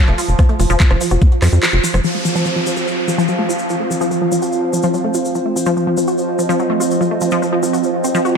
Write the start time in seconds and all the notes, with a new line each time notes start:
Already playing: F3
0.08 F1 A3, cross-stick, closed hi-hat
0.18 F4, open hi-hat, shaker
0.28 F1, closed hi-hat, shaker
0.39 F3, kick, cross-stick, closed hi-hat, shaker
0.49 A3, closed hi-hat
0.59 F1 F3, cross-stick, open hi-hat, shaker
0.70 F1 F3, shaker
0.80 F3, kick, clap, closed hi-hat, shaker
0.91 F1 F3, cross-stick, closed hi-hat
1.01 F3, open hi-hat, shaker
1.11 F1 F#4, cross-stick, closed hi-hat, shaker
1.21 kick, closed hi-hat, shaker
1.32 closed hi-hat
1.42 F2 F#3, cross-stick, clap, open hi-hat, shaker
1.53 F2 F#4, closed hi-hat, shaker
1.63 F3, cross-stick, clap, open hi-hat, shaker
1.73 F1 F4, closed hi-hat
1.84 F3, open hi-hat, shaker
1.94 F1 F#3, cross-stick, closed hi-hat, shaker
2.04 F3 C4, downlifter, shaker
2.15 A3
2.25 F3, shaker
2.35 F3, shaker
2.45 F3 F4, shaker
2.53 F3 F5
2.66 F3, shaker
2.76 F#4, shaker
2.88 C5, shaker
3.08 F3, shaker
3.18 F3, shaker
3.28 F#3, shaker
3.39 A3
3.49 F4, shaker
3.59 shaker
3.70 F3, shaker
3.80 A3
3.91 F3, shaker
4.01 F3, shaker
4.11 F3, shaker
4.22 F3
4.32 F3, shaker
4.42 F#4, shaker
4.52 shaker
4.73 F3, shaker
4.83 F3, shaker
4.94 F#3, shaker
5.04 A3
5.14 F4, shaker
5.25 shaker
5.35 F3, shaker
5.46 A3
5.56 F3, shaker
5.66 F3, shaker
5.77 F3, shaker
5.85 F3 D#5
5.97 F3, shaker
6.07 F#4, shaker
6.18 shaker
6.39 F3, shaker
6.49 F3, shaker
6.59 F#3, shaker
6.70 A3
6.80 F4, shaker
6.91 shaker
7.01 F3, shaker
7.11 A3
7.21 F3, shaker
7.31 F3, shaker
7.42 F3, shaker
7.53 F3
7.63 F3, shaker
7.73 F#4, shaker
7.83 shaker
8.04 C4, shaker
8.15 F3, shaker
8.25 F#4, shaker